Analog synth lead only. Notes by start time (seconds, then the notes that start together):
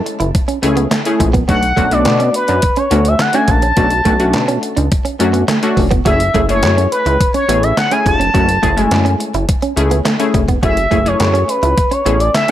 1.49 F#5
1.93 D5
2.36 B4
2.78 C#5
3.08 E5
3.21 F#5
3.35 G#5
3.50 A5
6.06 E5
6.50 C#5
6.92 B4
7.35 C#5
7.63 E5
7.78 F#5
7.92 G#5
8.07 A5
8.79 G#5
10.64 E5
11.07 C#5
11.49 B4
11.92 C#5
12.20 D5
12.35 E5